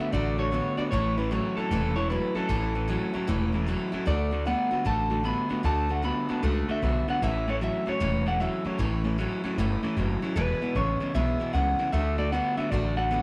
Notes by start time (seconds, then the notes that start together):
0.00 D3 A3 B3 D4 F#4 E5
0.12 A1 D3 A3 D4 F#4 D5
0.38 D3 A3 D4 F#4 C#5
0.51 D3 A3 B3 D4 F#4
0.77 D3 A3 B3 D4 F#4 D5, muted upright bass stroke
0.91 A1 A2 E3 A3 C#4 E4 C#5
1.16 A2 E3 A3 C#4 E4 B4
1.31 A2 E3 F#3 A3 C#4 E4 C#5
1.56 A2 F#3 A3 C#4 E4 A4, muted upright bass stroke
1.70 E1 A2 E3 A3 C#4 E4
1.96 A2 E3 A3 C#4 E4 C#5
2.10 A2 E3 F#3 A3 C#4 E4 B4
2.35 A2 F#3 A3 C#4 E4 A4, muted upright bass stroke
2.49 A1 A2 E3 A3 C#4 E4
2.74 A2 E3 A3 C#4 E4
2.88 A2 E3 F#3 A3 C#4 E4
3.13 A2 F#3 A3 C#4 E4, muted upright bass stroke
3.27 E1 A2 E3 A3 C#4 E4
3.52 A2 E3 A3 C#4 E4
3.66 A2 E3 F#3 A3 C#4 E4
3.92 A2 F#3 A3 C#4 E4, muted upright bass stroke
4.06 D2 D3 A3 D4 F#4 D5
4.31 D3 A3 D4 F#4
4.45 D3 A3 B3 D4 F#4 F#5
4.71 D3 A3 B3 D4 F#4, muted upright bass stroke
4.85 A1 D3 A3 D4 F#4 A5
5.10 D3 A3 D4 F#4
5.24 D3 A3 B3 D4 F#4 B5
5.49 D3 A3 B3 D4 F#4, muted upright bass stroke
5.63 D2 D3 A3 D4 F#4 A5
5.89 D3 A3 D4 F#4 F#5
6.02 D3 A3 B3 D4 F#4 B5
6.29 D3 A3 B3 D4 F#4 A5, muted upright bass stroke
6.43 C#2 D3 A3 D4 F#4 F#5
6.68 D3 A3 D4 F#4 E5
6.82 B1 D3 A3 B3 D4 F#4
7.08 D3 A3 B3 D4 F#4 F#5, muted upright bass stroke
7.22 A1 A2 E3 A3 C#4 E4 E5
7.48 A2 E3 A3 C#4 E4 C#5
7.61 A2 E3 F#3 A3 C#4 E4 E5
7.86 A2 F#3 A3 C#4 E4 C#5, muted upright bass stroke
8.00 E1 A2 E3 A3 C#4 E4
8.26 A2 E3 A3 C#4 E4 F#5
8.40 A2 E3 F#3 A3 C#4 E4 E5
8.65 A2 F#3 A3 C#4 E4 C#5, muted upright bass stroke
8.78 A1 A2 E3 A3 C#4 E4
9.04 A2 E3 A3 C#4 E4
9.18 A2 E3 F#3 A3 C#4 E4
9.44 A2 F#3 A3 C#4 E4, muted upright bass stroke
9.57 G1 A2 E3 A3 C#4 E4
9.83 A2 E3 A3 C#4 E4, muted upright bass stroke
9.96 F#1 A2 E3 F#3 A3 C#4 E4
10.22 A2 F#3 A3 C#4 E4, muted upright bass stroke
10.35 E1 E2 B2 E3 G#3 B3 E4 B4
10.61 E2 B2 E3 G#3 B3 E4, muted upright bass stroke
10.75 A1 E2 C#3 E3 G#3 B3 E4 C#5
11.00 E2 C#3 E3 G#3 B3 E4, muted upright bass stroke
11.14 B1 E2 B2 E3 G#3 B3 E4 E5
11.40 E2 B2 E3 G#3 B3 E4
11.53 C#2 E2 C#3 E3 G#3 B3 E4 F#5
11.79 E2 C#3 E3 G#3 B3 E4
11.92 D2 D3 A3 D4 F#4 E5
12.18 D3 A3 D4 F#4 D5
12.32 D3 A3 B3 D4 F#4 F#5
12.57 D3 A3 B3 D4 F#4 E5, muted upright bass stroke
12.71 A1 D3 A3 D4 F#4 D5
12.96 D3 A3 D4 F#4 F#5
13.11 D3 A3 B3 D4 F#4